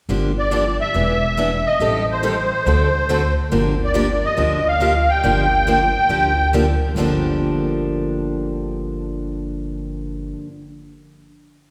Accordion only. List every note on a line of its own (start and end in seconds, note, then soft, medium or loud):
0.39 0.77 D5 medium
0.81 1.68 E5 loud
1.67 2.05 D#5 medium
2.12 3.34 C5 medium
3.85 4.26 D5 medium
4.25 4.68 D#5 medium
4.68 5.10 F5 loud
5.09 6.50 G5 loud